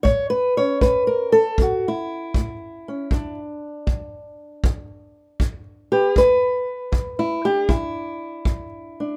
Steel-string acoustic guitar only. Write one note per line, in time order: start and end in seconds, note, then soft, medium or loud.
0.03 0.77 A2 medium
0.03 0.30 C#5 loud
0.30 0.56 B4 medium
0.57 2.87 C#4 soft
0.57 0.81 C#5 medium
0.81 1.53 A2 medium
0.81 1.07 B4 medium
1.07 1.33 A#4 medium
1.32 1.58 A4 loud
1.59 2.30 A2 medium
1.59 1.85 F#4 medium
1.88 3.39 E4 medium
2.36 3.07 A2 medium
2.88 3.09 C#4 soft
3.12 3.83 E2 medium
3.12 6.15 D4 medium
3.87 4.59 E2 medium
4.65 5.36 E2 medium
5.41 6.12 E2 medium
5.92 6.17 G4 medium
5.92 6.14 B4 soft
6.16 6.89 E2 medium
6.16 7.19 B4 loud
6.92 7.64 E2 medium
7.19 7.45 E4 medium
7.45 8.98 D4 soft
7.45 7.70 G4 loud
7.69 8.42 E2 medium
7.69 9.17 E4 medium
8.46 9.17 E2 medium
9.00 9.17 D4 soft